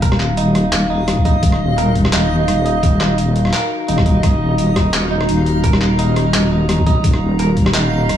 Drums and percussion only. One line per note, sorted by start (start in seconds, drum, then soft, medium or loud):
0.02 kick loud
0.02 closed hi-hat medium
0.12 cross-stick medium
0.20 clap medium
0.37 closed hi-hat medium
0.55 cross-stick medium
0.55 closed hi-hat soft
0.73 clap loud
0.73 closed hi-hat medium
1.08 cross-stick medium
1.08 closed hi-hat medium
1.17 kick medium
1.25 kick loud
1.25 closed hi-hat soft
1.43 kick loud
1.43 closed hi-hat medium
1.52 cross-stick medium
1.78 closed hi-hat medium
1.95 kick medium
1.95 closed hi-hat soft
2.05 cross-stick medium
2.13 clap loud
2.13 closed hi-hat medium
2.48 cross-stick medium
2.48 closed hi-hat medium
2.66 closed hi-hat soft
2.83 kick loud
2.83 closed hi-hat medium
3.01 cross-stick medium
3.01 clap medium
3.18 closed hi-hat medium
3.36 closed hi-hat soft
3.45 cross-stick soft
3.47 cross-stick soft
3.51 cross-stick soft
3.51 clap loud
3.51 closed hi-hat medium
3.88 closed hi-hat medium
3.98 kick medium
3.98 cross-stick medium
4.06 kick loud
4.06 closed hi-hat soft
4.23 kick loud
4.23 cross-stick soft
4.23 closed hi-hat medium
4.58 closed hi-hat medium
4.76 kick medium
4.76 cross-stick medium
4.76 closed hi-hat soft
4.94 clap loud
4.94 closed hi-hat medium
5.21 cross-stick medium
5.29 closed hi-hat medium
5.46 closed hi-hat soft
5.64 kick loud
5.64 closed hi-hat medium
5.73 cross-stick medium
5.81 clap medium
5.99 closed hi-hat medium
6.16 cross-stick medium
6.16 closed hi-hat soft
6.34 clap loud
6.34 closed hi-hat medium
6.69 cross-stick medium
6.69 closed hi-hat medium
6.78 kick medium
6.87 kick loud
6.87 closed hi-hat soft
7.04 kick loud
7.04 closed hi-hat medium
7.13 cross-stick medium
7.39 closed hi-hat medium
7.57 kick medium
7.57 closed hi-hat soft
7.66 cross-stick medium
7.74 clap loud
7.74 closed hi-hat medium
8.09 cross-stick medium
8.09 closed hi-hat medium